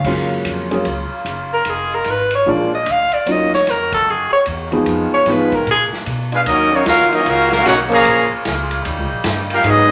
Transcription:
Already playing: F5
0.03 F#2 C#3 F#3 G#3 A#3 F4, kick, crash
0.07 C#4 F4
0.44 F2, hi-hat pedal, ride
0.71 F#3 G#3 A#3 C#4 G#4, ride
0.85 C#2, ride
1.25 F#1, hi-hat pedal, ride
1.53 A#4
1.65 F1 D#3 G#3 B3, ride
1.70 G#4
1.94 A#4
2.04 G#1, hi-hat pedal, ride
2.10 B4
2.31 ride
2.35 C#5
2.46 A#1 D3 F3 G#3 A#3 D4 F4
2.50 D5
2.75 D#5
2.86 D2, hi-hat pedal, ride
2.91 F5
3.12 D5, muted upright bass stroke, ride
3.25 D#2 D#3 F#3 A#3 C#4 D#4 F4 F#4, ride
3.32 D#5
3.53 C#5, snare
3.67 F2 A#4, snare, hi-hat pedal, ride
3.92 A4, kick, ride
4.06 F#2
4.11 G#4
4.32 C#5, muted upright bass stroke
4.46 E2, hi-hat pedal, ride
4.72 F3 G#3 B3 D#4 G#4, ride
4.86 F2 G#3 B3 F4, ride
5.13 C#5, muted upright bass stroke
5.25 G#2 F3 G#3 B3 D#4 F4, snare, hi-hat pedal, ride
5.30 B4
5.52 A#4, kick, ride
5.67 A#2 B2 A#3 D4, ride
5.71 G#4
5.92 muted upright bass stroke, snare
6.06 B2, hi-hat pedal, ride
6.32 G#3 D4 F4 G#4 B4 F5, ride
6.46 D#2 C#3 F#3 A#3 C#4 D#4 F#4 A#4 D#5, ride
6.71 F#3 A#3 C#4 D#4 F#4 C#5
6.86 D#2 C#4 F4 F#4 A#4 F5, snare, hi-hat pedal, ride
7.11 F#3 A#3 C#4 D#4 F#4 A#4 D#5, ride
7.23 C#2 F4, ride
7.28 C#4 F#4 A#4 F5
7.49 F4, snare
7.53 C#4 F#4 A#4 F5
7.63 B1 A#3 C#4 F#4, snare, hi-hat pedal, ride
7.67 D#4 A#4 C#5 F#5
7.88 C#3 F3 A#3 F5, ride
7.92 G#4 C#5 A#5
8.04 A#1 G#3 F4, ride
8.32 muted upright bass stroke
8.45 C#2, snare, hi-hat pedal, ride
8.71 ride
8.84 D#2 G3 A#3 D#4, ride
8.99 C#2
9.11 A#1
9.24 G2, snare, hi-hat pedal, ride
9.50 C#4 F4 G4 A#4 F5, ride
9.63 G#2 D#3 F#3 G#3 B3 D#4 F#4 G#4, ride
9.67 D#5

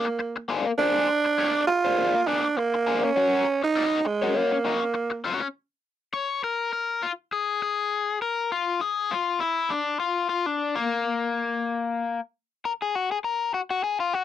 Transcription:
Already playing: A#3
0.06 muted overdriven electric guitar stroke
0.19 muted overdriven electric guitar stroke
0.36 muted overdriven electric guitar stroke
0.49 A#3 D4 G#4 C5
0.66 muted overdriven electric guitar stroke
0.78 A#3 D4 G#4 C5
1.25 muted overdriven electric guitar stroke
1.38 A#3 D4 G#4 D5
1.67 F4, muted overdriven electric guitar stroke
1.84 A#3 D4 G#4 C5
1.97 A#3 D4 G#4 C5
2.14 muted overdriven electric guitar stroke
2.27 A#3 D4 G#4 D5
2.44 muted overdriven electric guitar stroke
2.57 A#3, muted overdriven electric guitar stroke
2.74 muted overdriven electric guitar stroke
2.87 A#3 D4 G#4 C5
3.03 C#4, muted overdriven electric guitar stroke
3.16 C#4 F#4 A#4 C#5
3.63 D#4, muted overdriven electric guitar stroke
3.76 C#4 F#4 A#4 D#5
4.05 G#3, muted overdriven electric guitar stroke
4.22 C#4 F#4 A#4 C#5
4.35 A#3 C#4 F#4 A#4 C#5
4.52 muted overdriven electric guitar stroke
4.65 C#4 F#4 A#4 D#5
4.81 muted overdriven electric guitar stroke
4.94 muted overdriven electric guitar stroke
5.10 muted overdriven electric guitar stroke
5.24 C#4 F#4 A#4 C#5
5.41 muted overdriven electric guitar stroke
6.14 C#5
6.44 A#4
6.73 A#4
7.03 F4
7.33 G#4
7.62 G#4
8.22 A#4
8.52 F4
8.81 G#4
9.11 F4
9.40 E4
9.70 D4
10.00 F4
10.29 F4
10.46 D4
10.76 A#3
12.65 A#4
12.82 G#4
12.95 F#4
13.11 G#4
13.24 A#4
13.54 F#4
13.70 F#4
13.84 G#4
14.00 F4
14.14 F#4

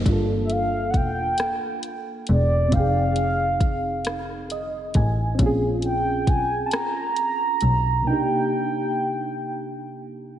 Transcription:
0.02 A#3 D4
0.06 G1 F4, kick, closed hi-hat
0.13 A4
0.45 E5
0.50 F5, closed hi-hat
0.90 F#5, kick, closed hi-hat
0.95 E1 G5
1.38 cross-stick, closed hi-hat
1.83 closed hi-hat
2.27 E1 D5, closed hi-hat
2.68 C4 D#4, kick, closed hi-hat
2.73 F1 F5 G5
2.79 G#4
3.16 closed hi-hat
3.60 kick, closed hi-hat
4.05 cross-stick, closed hi-hat
4.50 D#5, closed hi-hat
4.94 A1 G#5, kick, closed hi-hat
5.35 C4 C#4
5.39 A#1 F4, kick, closed hi-hat
5.46 G#4
5.82 G5, closed hi-hat
6.22 G5
6.27 B1 G#5, kick, closed hi-hat
6.66 A5
6.71 A#5, cross-stick, closed hi-hat
7.16 closed hi-hat
7.61 B1, closed hi-hat
8.02 C3 A#3
8.07 D4 D#4 G5
8.13 G4

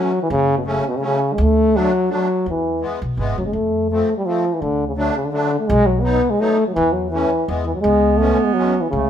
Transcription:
Already playing: E3 F#3 A3 C#4
0.23 E3
0.30 F#1 C#3
0.58 B2
0.65 C#3 F#3 A3 C#4
0.88 B2
0.96 C#3 F#3
1.01 A3 C#4
1.06 C#3
1.33 G#3
1.38 D2
1.42 A3
1.73 F#3 A3 D4
2.09 F#3 A3 D4
2.14 F#3
2.46 E2
2.50 E3
2.80 E3 G#3 B3
3.02 B1
3.17 G#1 E3 G#3 B3
3.37 F#1 F#3
3.46 G#3
3.53 F2 A3
3.90 F3 A3 C4
4.18 G3
4.26 F3 A3 C4
4.53 E3
4.61 D2 D3
4.88 C#3
4.96 D3 F#3 A3 D4
5.15 C#3
5.25 D3
5.31 D3 F#3 A3 D4
5.59 A3
5.67 B1 G#3
5.86 F#3
6.01 F#3 B3 D#4
6.30 G#3
6.39 F#3 A3 B3 D#4
6.68 F#3
6.74 E2 E3
6.93 F#3
7.10 E3 A3 C#4
7.47 E2 E3 G#3 B3
7.65 E3
7.75 F#3
7.81 C#2 G#3
7.86 B3
8.17 E3 G#3 A3 C#4
8.44 G#3
8.54 E3 F#3 G#3
8.58 C#4
8.81 E3
8.90 C#2 C#3
8.95 A3

